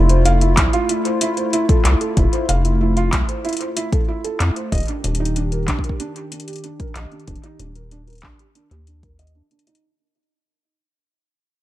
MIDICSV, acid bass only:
0, 0, Header, 1, 2, 480
1, 0, Start_track
1, 0, Tempo, 638298
1, 1631, Time_signature, 4, 2, 24, 8
1, 8745, End_track
2, 0, Start_track
2, 0, Title_t, "Acid bass"
2, 0, Program_c, 0, 38
2, 0, Note_on_c, 0, 29, 94
2, 432, Note_on_c, 0, 36, 89
2, 443, Note_off_c, 0, 29, 0
2, 511, Note_off_c, 0, 36, 0
2, 1391, Note_on_c, 0, 36, 100
2, 1470, Note_off_c, 0, 36, 0
2, 1632, Note_on_c, 0, 29, 97
2, 1711, Note_off_c, 0, 29, 0
2, 1872, Note_on_c, 0, 29, 94
2, 2351, Note_on_c, 0, 36, 85
2, 2363, Note_off_c, 0, 29, 0
2, 2430, Note_off_c, 0, 36, 0
2, 3311, Note_on_c, 0, 41, 82
2, 3390, Note_off_c, 0, 41, 0
2, 3551, Note_on_c, 0, 27, 99
2, 3630, Note_off_c, 0, 27, 0
2, 3792, Note_on_c, 0, 27, 95
2, 4272, Note_on_c, 0, 34, 84
2, 4283, Note_off_c, 0, 27, 0
2, 4351, Note_off_c, 0, 34, 0
2, 5232, Note_on_c, 0, 34, 101
2, 5310, Note_off_c, 0, 34, 0
2, 5472, Note_on_c, 0, 27, 95
2, 5551, Note_off_c, 0, 27, 0
2, 5712, Note_on_c, 0, 27, 94
2, 6192, Note_on_c, 0, 34, 84
2, 6203, Note_off_c, 0, 27, 0
2, 6271, Note_off_c, 0, 34, 0
2, 6551, Note_on_c, 0, 39, 91
2, 7086, Note_off_c, 0, 39, 0
2, 8745, End_track
0, 0, End_of_file